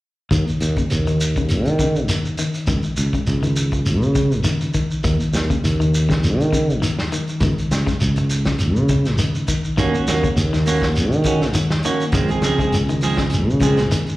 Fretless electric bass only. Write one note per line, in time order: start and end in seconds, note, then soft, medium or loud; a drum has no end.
0.31 0.45 D#2 medium
0.49 muted fretless electric bass stroke soft
0.61 0.75 D#2 medium
0.91 1.66 D#2 medium
1.66 2.10 D#3 medium
2.10 2.35 D#2 medium
2.68 2.82 C#2 medium
2.84 muted fretless electric bass stroke soft
2.98 3.12 C#2 medium
3.27 4.02 C#2 medium
4.02 4.45 C#3 medium
4.45 4.71 C#2 medium
5.04 5.19 D#2 medium
5.21 muted fretless electric bass stroke soft
5.33 5.48 D#2 medium
5.64 6.39 D#2 medium
6.39 6.82 D#3 medium
6.82 7.08 D#2 medium
7.41 7.55 C#2 medium
7.58 muted fretless electric bass stroke soft
7.71 7.86 C#2 medium
8.02 8.78 C#2 medium
8.78 9.19 C#3 medium
9.19 9.45 C#2 medium
9.78 9.93 D#2 medium
9.96 muted fretless electric bass stroke soft
10.08 10.22 D#2 medium
10.36 11.13 D#2 medium
11.13 11.55 D#3 medium
11.55 11.81 D#2 medium
12.12 12.28 C#2 medium
12.30 muted fretless electric bass stroke soft
12.43 12.57 C#2 medium
12.72 13.49 C#2 medium
13.49 13.91 C#3 medium
13.91 14.17 C#2 medium